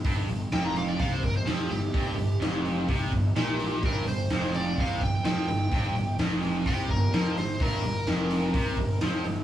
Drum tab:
HH |oooooooo|oooooooo|oooooooo|oooooooo|
SD |--o---o-|--o---o-|--o---o-|--o---o-|
BD |o---oo--|o---oo--|o---oo--|o---oo--|

HH |oooooooo|
SD |--o---o-|
BD |o---oo--|